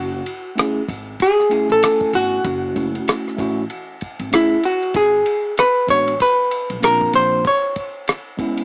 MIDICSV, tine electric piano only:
0, 0, Header, 1, 2, 480
1, 0, Start_track
1, 0, Key_signature, 3, "minor"
1, 0, Tempo, 625000
1, 1880, Time_signature, 4, 2, 24, 8
1, 6638, End_track
2, 0, Start_track
2, 0, Title_t, "Tine electric piano"
2, 0, Program_c, 0, 4
2, 425, Note_on_c, 0, 57, 76
2, 435, Note_on_c, 0, 61, 76
2, 445, Note_on_c, 0, 64, 70
2, 454, Note_on_c, 0, 68, 83
2, 615, Note_off_c, 0, 57, 0
2, 620, Note_off_c, 0, 61, 0
2, 625, Note_off_c, 0, 64, 0
2, 629, Note_off_c, 0, 68, 0
2, 1146, Note_on_c, 0, 57, 71
2, 1156, Note_on_c, 0, 61, 59
2, 1165, Note_on_c, 0, 64, 64
2, 1175, Note_on_c, 0, 80, 77
2, 1834, Note_off_c, 0, 57, 0
2, 1839, Note_off_c, 0, 61, 0
2, 1844, Note_off_c, 0, 64, 0
2, 1849, Note_off_c, 0, 80, 0
2, 2105, Note_on_c, 0, 57, 62
2, 2115, Note_on_c, 0, 61, 60
2, 2124, Note_on_c, 0, 64, 57
2, 2133, Note_on_c, 0, 66, 74
2, 2574, Note_off_c, 0, 57, 0
2, 2584, Note_on_c, 0, 57, 84
2, 2585, Note_off_c, 0, 61, 0
2, 2594, Note_on_c, 0, 61, 77
2, 2595, Note_off_c, 0, 64, 0
2, 2604, Note_on_c, 0, 64, 74
2, 2605, Note_off_c, 0, 66, 0
2, 2614, Note_on_c, 0, 66, 86
2, 2774, Note_off_c, 0, 57, 0
2, 2779, Note_off_c, 0, 61, 0
2, 2784, Note_off_c, 0, 64, 0
2, 2789, Note_off_c, 0, 66, 0
2, 3305, Note_on_c, 0, 57, 72
2, 3314, Note_on_c, 0, 61, 63
2, 3325, Note_on_c, 0, 64, 59
2, 3334, Note_on_c, 0, 68, 74
2, 3495, Note_off_c, 0, 57, 0
2, 3499, Note_off_c, 0, 61, 0
2, 3505, Note_off_c, 0, 64, 0
2, 3509, Note_off_c, 0, 68, 0
2, 4508, Note_on_c, 0, 56, 62
2, 4517, Note_on_c, 0, 59, 58
2, 4528, Note_on_c, 0, 62, 60
2, 4539, Note_on_c, 0, 66, 72
2, 4696, Note_off_c, 0, 56, 0
2, 4701, Note_off_c, 0, 59, 0
2, 4706, Note_off_c, 0, 62, 0
2, 4712, Note_off_c, 0, 66, 0
2, 5225, Note_on_c, 0, 58, 72
2, 5237, Note_on_c, 0, 60, 61
2, 5248, Note_on_c, 0, 62, 64
2, 5255, Note_on_c, 0, 65, 76
2, 5713, Note_off_c, 0, 58, 0
2, 5719, Note_off_c, 0, 60, 0
2, 5724, Note_off_c, 0, 62, 0
2, 5728, Note_off_c, 0, 65, 0
2, 6429, Note_on_c, 0, 56, 81
2, 6439, Note_on_c, 0, 59, 81
2, 6449, Note_on_c, 0, 61, 78
2, 6459, Note_on_c, 0, 64, 92
2, 6638, Note_off_c, 0, 56, 0
2, 6638, Note_off_c, 0, 59, 0
2, 6638, Note_off_c, 0, 61, 0
2, 6638, Note_off_c, 0, 64, 0
2, 6638, End_track
0, 0, End_of_file